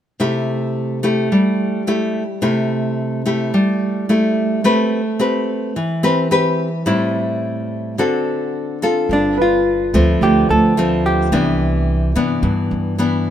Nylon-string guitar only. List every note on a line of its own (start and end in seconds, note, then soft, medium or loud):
0.20 1.28 C3 medium
0.20 0.98 A3 medium
0.20 0.99 E4 soft
0.20 0.99 G4 medium
1.03 1.82 A3 medium
1.03 1.82 E4 soft
1.03 1.82 G4 medium
1.32 2.40 G3 medium
1.87 2.22 A3 soft
1.87 2.23 E4 medium
1.87 2.23 G4 medium
2.42 3.50 C3 medium
2.42 3.21 A3 soft
2.42 3.21 E4 soft
2.42 3.21 G4 medium
3.26 4.04 A3 soft
3.26 4.05 E4 medium
3.26 4.05 G4 medium
3.54 4.62 G3 medium
4.09 4.60 A3 soft
4.09 4.60 E4 soft
4.09 4.61 G4 soft
4.64 5.73 A3 medium
4.64 5.00 C4 medium
4.64 5.00 G4 medium
4.64 5.01 B4 medium
5.19 5.75 C4 medium
5.19 5.75 G4 medium
5.19 5.76 B4 medium
5.76 6.84 E3 medium
6.03 6.27 C4 medium
6.03 6.27 G4 medium
6.03 6.27 B4 medium
6.31 6.67 C4 soft
6.31 6.67 G4 medium
6.31 6.67 B4 medium
6.86 7.95 A2 medium
6.86 7.93 G3 soft
6.86 7.93 C4 soft
6.86 7.94 E4 medium
7.98 9.07 D3 medium
7.98 8.77 C4 medium
7.98 8.77 F#4 soft
7.98 8.78 A4 medium
8.82 9.61 C4 medium
8.82 9.61 F4 soft
8.82 9.62 A4 medium
9.11 10.19 G2 soft
9.94 10.73 F3 medium
9.94 10.73 A3 medium
9.94 10.73 C4 medium
10.22 11.30 D3 soft
10.77 11.28 F3 soft
10.77 11.28 A3 soft
10.77 11.29 C4 medium
11.32 12.41 C3 soft
11.32 12.11 E3 medium
11.32 12.12 B3 soft
11.32 12.11 D4 medium
12.16 12.95 E3 soft
12.16 12.95 B3 medium
12.16 12.95 D4 medium
12.43 13.30 G2 medium
12.98 13.30 E3 soft
12.98 13.30 B3 soft
12.98 13.30 D4 medium